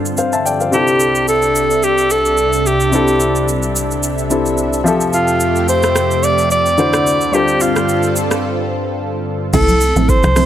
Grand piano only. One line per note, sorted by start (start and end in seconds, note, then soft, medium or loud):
0.00 0.68 G3 medium
0.00 0.68 D4 medium
0.00 0.69 F4 medium
0.00 0.69 A4 medium
0.00 0.15 C5 medium
0.18 0.33 C5 medium
0.18 0.32 F5 medium
0.33 0.45 E5 medium
0.33 0.45 A5 medium
0.46 0.60 D5 medium
0.46 0.60 G5 medium
0.61 0.87 C5 soft
0.61 0.87 F5 medium
0.71 2.88 C3 medium
0.71 2.89 C4 medium
0.71 2.89 D4 medium
0.71 2.89 E4 medium
0.71 2.90 A4 medium
2.91 4.27 C3 medium
2.91 4.28 C4 medium
2.91 4.28 D4 medium
2.91 4.29 E4 medium
2.91 4.29 A4 medium
4.30 4.85 C3 medium
4.30 4.83 C4 medium
4.30 4.86 D4 medium
4.30 4.86 E4 medium
4.30 4.86 A4 medium
4.84 6.74 F3 medium
4.84 6.74 C4 medium
4.84 6.75 G4 medium
4.84 6.75 A4 medium
4.84 6.75 E5 medium
6.78 7.33 D3 medium
6.78 7.31 D4 medium
6.78 7.33 E4 medium
6.78 7.34 F#4 medium
6.78 7.34 C5 medium
7.32 9.49 G3 medium
7.32 9.49 D4 medium
7.32 9.50 F4 medium
7.32 9.50 A4 medium
7.32 9.51 C5 medium